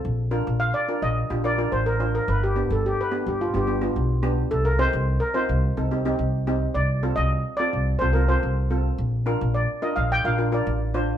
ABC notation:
X:1
M:4/4
L:1/16
Q:1/4=107
K:Bb
V:1 name="Steel pan"
z4 f d2 e3 d2 c B2 B | =B G2 A G B2 G F G2 F2 z3 | A B c3 B c6 z4 | d3 e3 d3 c B c4 z |
z4 d2 e f g f2 d2 z3 |]
V:2 name="Steel pan"
z2 [DFB]2 z2 [DFB]2 z [DFG] [DFB] [DFB]2 z [DFc]2 | z2 [=B,DG]2 z2 [B,DG]2 z [B,DG] [B,DG] [B,DG]2 z [B,DG]2 | z2 [CEG]2 z2 [CEF]2 z [CEA] [CEG] [CEG]2 z [CEG]2 | z2 [CFA]2 z2 [CFA]2 z [CFA] [CFA] [CFA]2 z [CFA]2 |
z2 [DFB]2 z2 [DFB]2 z [DFB] [DFB] [DFB]2 z [DFc]2 |]
V:3 name="Upright bass" clef=bass
B,,,3 B,,,2 z2 B,,,2 B,,,3 A,,,4 | G,,,3 G,,,2 z2 G,,,2 G,,,3 =B,,,4 | C,,3 C,,2 z2 C,,2 C,,3 C,,4 | C,,3 C,,2 z2 C,,2 C,,3 C,,4 |
B,,,3 B,,,2 z2 B,,,2 B,,,3 A,,,4 |]